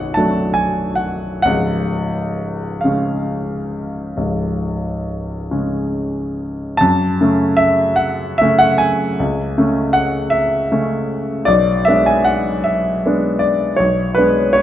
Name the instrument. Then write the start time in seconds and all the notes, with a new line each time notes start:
grand piano
Already playing: B0 B1 F#5 G#5
0.14 F#3 A3 D4 A5
0.54 G#5
0.95 F#5
1.42 C#1 C#2 F#5
2.81 C#3 F5
2.85 G#3 C#4
4.17 C#1 C#2
5.51 C#3 G#3 C#4
6.77 F#2 A5
7.21 C#3 A3 C#4
7.57 E5
7.96 F#5
8.38 C#3 A3 C#4 E5
8.59 F#5
8.78 G#5
9.20 C#2
9.58 C#3 A3 C#4
9.93 F#5
10.30 E5
10.72 C#3 A3 C#4
11.45 B1 D5
11.85 G#3 B3 D4 E5
12.06 G#5
12.25 F#5
12.64 E5
13.06 G#3 B3 D4
13.39 D5
13.76 B1 C#5
14.15 G#3 B3 D4 B4
14.53 C#5